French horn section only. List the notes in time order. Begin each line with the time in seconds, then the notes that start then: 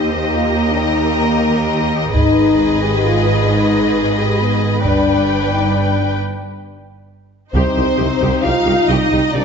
Already playing: D#4
0.13 G4
0.34 F4
0.57 D#4
0.69 D4
0.78 D#4
1.24 A#3
2.14 D#4
2.82 G4
3.05 F4
3.27 D#4
3.39 D4
3.49 D#4
4.18 G4
4.40 B3
4.85 D4
5.52 D#4
5.75 D4
7.54 C4
8.43 F4
8.89 D#4
9.33 D4